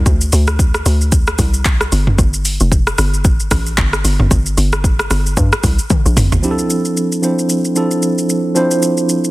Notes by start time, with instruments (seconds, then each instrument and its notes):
0.06 log drum bass D2, kick, shaker
0.21 shaker
0.32 log drum bass D2, open hi-hat, shaker
0.47 cross-stick, shaker
0.59 kick, shaker
0.74 cross-stick, shaker
0.86 log drum bass D2, open hi-hat, shaker
1.01 shaker
1.12 kick, shaker
1.27 cross-stick, shaker
1.39 log drum bass C2, kick, open hi-hat, shaker
1.54 shaker
1.65 kick, clap, shaker
1.81 cross-stick, shaker
1.92 log drum bass G1, open hi-hat, shaker
2.07 mid tom
2.18 log drum bass G1, kick, shaker
2.34 shaker
2.45 open hi-hat, shaker
2.60 log drum bass F1, shaker
2.72 kick, shaker
2.87 cross-stick, shaker
2.98 log drum bass G1, cross-stick, open hi-hat, shaker
3.14 shaker
3.25 kick, shaker
3.40 shaker
3.51 log drum bass A1, kick, cross-stick, open hi-hat, shaker
3.66 shaker
3.78 log drum bass G1, kick, clap, shaker
3.93 cross-stick, shaker
4.04 log drum bass G1, open hi-hat, shaker
4.20 log drum bass G1, mid tom
4.31 log drum bass G1, kick, shaker
4.46 shaker
4.57 log drum bass G1, open hi-hat, shaker
4.73 cross-stick, shaker
4.84 kick, shaker
4.99 cross-stick, shaker
5.11 log drum bass G1, cross-stick, open hi-hat, shaker
5.26 shaker
5.37 log drum bass G2, kick, shaker
5.52 cross-stick, shaker
5.63 log drum bass C2, kick, open hi-hat, shaker
5.79 shaker
5.90 kick, high tom, shaker
6.06 log drum bass A#1, shaker
6.17 log drum bass G1, mid tom, open hi-hat, shaker
6.32 log drum bass G1, floor tom, shaker
6.42 tine electric piano F3 C4 D4 E4 G4, shaker
6.51 tine electric piano A4
6.59 shaker
6.70 shaker
6.85 shaker
6.97 shaker
7.12 shaker
7.22 tine electric piano F3 C4 D4 E4 C5, shaker
7.39 shaker
7.49 shaker
7.65 shaker
7.75 tine electric piano F3 C4 D4 E4 A4, shaker
7.91 shaker
8.02 shaker
8.18 shaker
8.29 shaker
8.55 tine electric piano F3 C4 D4 E4 C5, shaker
8.71 shaker
8.82 shaker
8.97 shaker
9.09 shaker
9.24 shaker